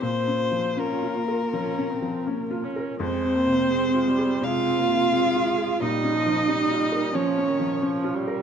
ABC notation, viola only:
X:1
M:4/4
L:1/8
Q:1/4=86
K:Fm
V:1 name="Viola" clef=bass
B,2 D B, D C B, D | A, B, A, G, A, B, A,2 | G, F, G,2 F, E, F, G, |]